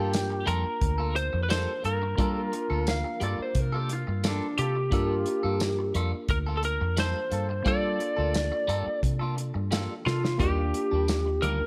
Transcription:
Already playing: G2 A#3 D4 F4 G4 A4 A#4 A5
0.00 A#3
0.13 muted clean electric guitar stroke, snare, closed hi-hat, tambourine
0.30 muted clean electric guitar stroke
0.46 F2 G3 A#3 F4 A4 A#4, closed hi-hat
0.64 muted clean electric guitar stroke, muted fingered electric bass stroke
0.81 D2, kick, closed hi-hat
0.98 A#3 F4 A4
1.15 C5, muted clean electric guitar stroke, closed hi-hat
1.33 F2, muted clean electric guitar stroke
1.43 B4
1.49 G3 A#3 F4 A4 C5, snare, closed hi-hat, tambourine
1.82 G2 A#3 F4 A4 A#4, muted clean electric guitar stroke, closed hi-hat
2.02 muted clean electric guitar stroke
2.17 G3 A#3 D4 F4 A4 A#4, kick, closed hi-hat
2.52 muted clean electric guitar stroke, closed hi-hat
2.70 D2 A#3 F4 A4
2.87 F5, muted clean electric guitar stroke, snare, closed hi-hat, tambourine
3.04 muted clean electric guitar stroke
3.20 G2 G3 A#3 F4 A4 D5, closed hi-hat
3.39 C5, muted clean electric guitar stroke, muted fingered electric bass stroke
3.55 C3, kick, closed hi-hat
3.59 A#4
3.72 A#3 F4 G4 A4
3.89 F4, muted clean electric guitar stroke, closed hi-hat
4.07 G2, muted clean electric guitar stroke
4.24 G3 A#3 F4 A4, snare, closed hi-hat, tambourine
4.28 D4
4.58 C3 A#3 F4 G4 A4, muted clean electric guitar stroke, closed hi-hat
4.75 muted clean electric guitar stroke
4.90 G2 G3 A#3 D4 F4 A4 A#4, kick, closed hi-hat
5.26 muted clean electric guitar stroke, closed hi-hat
5.43 G2 A#3 F4 A4
5.60 muted clean electric guitar stroke, snare, closed hi-hat, tambourine
5.79 muted clean electric guitar stroke
5.95 F2 G3 A#3 F4 A4, closed hi-hat
6.12 muted clean electric guitar stroke, muted fingered electric bass stroke
6.28 D2 A#4, kick, closed hi-hat
6.47 A#3 F4 A4
6.57 A4
6.63 A#4, muted clean electric guitar stroke, closed hi-hat
6.81 F2, muted clean electric guitar stroke
6.97 G3 A#3 F4 A4 C5, snare, closed hi-hat, tambourine
7.29 G2 A#3 F4 A4, muted clean electric guitar stroke, closed hi-hat
7.49 muted clean electric guitar stroke
7.63 G3 A#3 D4 F4 A4, kick, closed hi-hat
7.68 D5
7.99 muted clean electric guitar stroke, closed hi-hat
8.16 D2 A#3 F4 A4
8.33 muted clean electric guitar stroke, snare, closed hi-hat, tambourine
8.52 muted clean electric guitar stroke
8.68 G2 G3 A#3 F4 A4, closed hi-hat
8.86 muted clean electric guitar stroke, muted fingered electric bass stroke
9.03 C3, kick, closed hi-hat
9.19 A#3 F4 A4
9.36 muted clean electric guitar stroke, closed hi-hat
9.54 G2, muted clean electric guitar stroke
9.71 G3 A#3 F4 A4, snare, closed hi-hat, tambourine
10.04 C3 A#3 F4 A4, muted clean electric guitar stroke, snare
10.24 muted clean electric guitar stroke, snare
10.38 D#2 D#3 G3 A#3 D4 F4 G4, kick, closed hi-hat
10.74 muted clean electric guitar stroke, closed hi-hat
10.91 D#2 G3 A#3 D4
11.08 muted clean electric guitar stroke, snare, closed hi-hat, tambourine
11.26 muted clean electric guitar stroke
11.42 D2 D#3 G3 A#3 D4 A#4, closed hi-hat
11.59 muted clean electric guitar stroke, muted fingered electric bass stroke

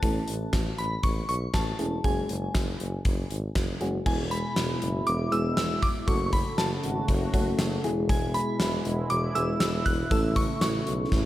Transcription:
Already playing: A5
0.03 A1 A3 C#4 E4 A4, kick, closed hi-hat
0.28 A1, closed hi-hat
0.53 A1, kick, snare, closed hi-hat
0.78 A1 B5, closed hi-hat
1.03 A1 C#6, kick, closed hi-hat
1.29 B1 C#6, closed hi-hat
1.54 A1 A5, kick, snare, closed hi-hat
1.79 E1 A3 C#4 E4 G#4, closed hi-hat
2.04 F#1 G#3 C#4 F#4 G#4 G#5, kick, closed hi-hat
2.29 F#1, closed hi-hat
2.55 F#1, kick, snare, closed hi-hat
2.80 F#1, closed hi-hat
3.05 F#1, kick, closed hi-hat
3.30 G#1, closed hi-hat
3.55 F#1, kick, snare, closed hi-hat
3.81 F#1 G#3 C#4 F#4 G#4, closed hi-hat
4.06 E1 B2 G#3 B3 E4 G#4 G#5, kick, crash
4.31 B5, closed hi-hat
4.56 E1, snare, closed hi-hat
4.82 F#1, closed hi-hat
5.07 E1 D6, closed hi-hat
5.32 E1 G#3 B3 E4 G#4 E6, closed hi-hat
5.57 E1 E6, snare, closed hi-hat
5.82 D6, kick, closed hi-hat
6.08 F#1 C#3 A3 C#4 F#4 A4 C#6, kick, closed hi-hat
6.26 C#6
6.33 B5, kick, closed hi-hat
6.58 F#1 A5, snare, closed hi-hat
6.83 G#1, closed hi-hat
7.08 F#1, kick, closed hi-hat
7.34 F#1 A3 C#4 F#4 A4, kick, closed hi-hat
7.59 F#1, snare, closed hi-hat
7.84 E1 B2 G#3 B3 E4 G#4, closed hi-hat
8.09 G#5, kick, closed hi-hat
8.34 B5, closed hi-hat
8.60 E1, snare, closed hi-hat
8.85 E1, closed hi-hat
9.10 E1 D6, closed hi-hat
9.35 E1 G#3 B3 E4 G#4 E6, closed hi-hat
9.60 E1 E6, snare, closed hi-hat
9.86 E1 F#6, kick, closed hi-hat
10.11 A1 C#3 A3 C#4 E4 A4 E6, kick, closed hi-hat
10.36 C#6, kick, closed hi-hat
10.61 A1 C#6, snare, closed hi-hat
10.87 B1, closed hi-hat
11.12 A1, kick, snare

